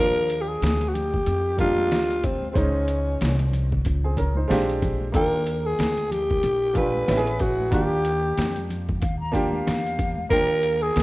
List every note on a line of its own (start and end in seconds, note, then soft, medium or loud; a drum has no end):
0.00 0.59 D#2 medium
0.00 1.07 F3 medium
0.00 1.08 A#3 medium
0.00 1.08 D4 medium
0.00 1.09 F4 medium
0.00 0.43 A#4 loud
0.17 shaker soft
0.30 closed hi-hat medium
0.30 shaker soft
0.41 0.50 G4 medium
0.48 0.90 G#4 medium
0.48 shaker soft
0.62 1.23 D2 medium
0.62 snare loud
0.62 closed hi-hat medium
0.62 shaker medium
0.81 closed hi-hat soft
0.81 high conga medium
0.81 shaker soft
0.89 0.96 F#4 medium
0.94 1.59 G4 loud
0.94 closed hi-hat medium
0.94 low conga medium
0.94 shaker soft
1.14 kick medium
1.14 high conga soft
1.14 shaker soft
1.26 1.92 F2 medium
1.26 closed hi-hat medium
1.26 high conga soft
1.26 shaker medium
1.46 shaker soft
1.57 2.42 G3 medium
1.57 2.43 A#3 medium
1.57 2.43 D4 medium
1.57 2.26 F4 loud
1.57 2.44 G4 medium
1.57 kick medium
1.57 closed hi-hat medium
1.57 low conga medium
1.57 shaker soft
1.78 high conga medium
1.78 shaker soft
1.91 2.53 D2 medium
1.91 snare loud
1.91 closed hi-hat medium
1.91 shaker medium
2.09 closed hi-hat soft
2.09 shaker soft
2.24 2.50 C4 medium
2.24 kick medium
2.24 closed hi-hat medium
2.24 low conga medium
2.24 shaker soft
2.42 high conga medium
2.42 shaker soft
2.51 3.65 G#3 medium
2.51 2.58 C4 medium
2.51 3.66 C5 medium
2.55 3.17 C#2 medium
2.55 3.67 C#4 medium
2.55 3.53 C#4 medium
2.55 3.67 D#4 medium
2.55 kick loud
2.55 closed hi-hat medium
2.55 shaker medium
2.75 shaker medium
2.88 closed hi-hat medium
2.88 shaker soft
3.06 shaker soft
3.19 3.82 C2 medium
3.19 snare loud
3.19 closed hi-hat medium
3.19 shaker medium
3.38 closed hi-hat soft
3.38 high conga medium
3.38 shaker soft
3.52 closed hi-hat medium
3.52 low conga medium
3.52 shaker soft
3.71 kick medium
3.71 high conga soft
3.71 shaker soft
3.84 4.47 C#2 medium
3.84 kick medium
3.84 closed hi-hat medium
3.84 high conga soft
3.84 shaker medium
4.03 4.17 C4 medium
4.03 4.17 G#4 medium
4.03 shaker medium
4.15 4.35 C#4 medium
4.15 4.35 A#4 medium
4.15 4.47 A#5 medium
4.15 kick medium
4.15 closed hi-hat medium
4.15 low conga medium
4.15 shaker soft
4.35 4.67 D#4 soft
4.35 4.67 C5 medium
4.35 high conga medium
4.35 shaker soft
4.48 5.11 A#1 loud
4.48 5.05 G#3 medium
4.48 5.05 C4 medium
4.48 5.06 D4 medium
4.48 5.10 F5 medium
4.48 snare loud
4.48 closed hi-hat medium
4.48 shaker medium
4.52 5.07 G4 loud
4.67 closed hi-hat soft
4.67 shaker soft
4.82 kick medium
4.82 closed hi-hat medium
4.82 low conga medium
4.82 shaker soft
5.01 high conga medium
5.01 shaker soft
5.12 5.75 D#2 medium
5.12 6.24 A#3 medium
5.12 6.24 D4 medium
5.12 6.25 F4 medium
5.12 5.67 A#4 loud
5.12 6.26 G5 medium
5.12 kick loud
5.12 closed hi-hat medium
5.12 shaker medium
5.33 shaker soft
5.46 closed hi-hat medium
5.46 shaker soft
5.65 6.13 G#4 medium
5.65 shaker soft
5.79 6.40 D2 medium
5.79 snare loud
5.79 closed hi-hat medium
5.79 shaker medium
5.97 closed hi-hat soft
5.97 high conga medium
5.97 shaker soft
6.11 6.79 G4 loud
6.11 closed hi-hat medium
6.11 low conga medium
6.11 shaker soft
6.30 kick medium
6.30 high conga soft
6.30 shaker soft
6.43 7.05 A#1 medium
6.43 closed hi-hat medium
6.43 high conga soft
6.43 shaker medium
6.63 shaker soft
6.74 7.07 A#2 medium
6.74 7.07 D4 medium
6.74 7.08 F4 medium
6.74 7.08 G4 medium
6.74 7.43 B4 loud
6.74 kick medium
6.74 closed hi-hat medium
6.74 low conga medium
6.74 shaker soft
6.94 high conga medium
6.94 shaker soft
7.07 7.69 A1 medium
7.07 7.63 B3 medium
7.07 7.64 C#4 medium
7.07 7.65 E4 medium
7.07 snare medium
7.07 closed hi-hat medium
7.07 shaker medium
7.11 7.17 G4 medium
7.17 7.68 G#4 medium
7.27 closed hi-hat soft
7.27 shaker soft
7.39 7.73 F#4 medium
7.39 kick medium
7.39 closed hi-hat medium
7.39 low conga medium
7.39 shaker soft
7.60 high conga medium
7.60 shaker soft
7.71 8.33 D#2 loud
7.71 8.82 A#3 medium
7.71 8.83 D4 medium
7.71 8.83 F4 medium
7.71 8.66 G4 medium
7.71 8.84 G4 medium
7.71 kick loud
7.71 closed hi-hat medium
7.71 shaker medium
7.92 shaker soft
8.05 closed hi-hat medium
8.05 shaker soft
8.25 shaker soft
8.37 9.02 F2 medium
8.37 snare loud
8.37 closed hi-hat medium
8.37 shaker medium
8.56 closed hi-hat soft
8.56 high conga medium
8.56 shaker soft
8.70 closed hi-hat medium
8.70 low conga medium
8.70 shaker soft
8.89 kick medium
8.89 high conga soft
8.89 shaker soft
9.01 9.63 D#2 medium
9.01 9.19 F5 medium
9.01 kick medium
9.01 closed hi-hat medium
9.01 high conga soft
9.01 shaker medium
9.20 9.35 A#5 medium
9.20 shaker soft
9.32 10.17 A#3 medium
9.32 10.17 D4 medium
9.32 10.18 F4 medium
9.32 10.18 G4 medium
9.32 9.51 G5 medium
9.32 kick medium
9.32 closed hi-hat medium
9.32 low conga medium
9.32 shaker soft
9.52 10.26 F5 medium
9.52 high conga medium
9.52 shaker soft
9.66 10.28 E2 medium
9.66 snare medium
9.66 closed hi-hat medium
9.66 shaker medium
9.84 closed hi-hat soft
9.84 shaker soft
9.98 kick medium
9.98 closed hi-hat medium
9.98 low conga medium
9.98 shaker soft
10.17 high conga medium
10.17 shaker soft
10.29 10.91 D#2 medium
10.29 11.03 A#3 medium
10.29 11.03 D4 medium
10.29 11.03 F4 medium
10.29 10.84 A#4 loud
10.29 11.03 G5 medium
10.29 kick loud
10.29 closed hi-hat medium
10.29 shaker medium
10.50 shaker soft
10.63 closed hi-hat medium
10.63 shaker soft
10.81 11.03 G#4 loud
10.81 shaker soft
10.95 11.03 D2 medium
10.95 snare loud
10.95 closed hi-hat medium
10.95 shaker medium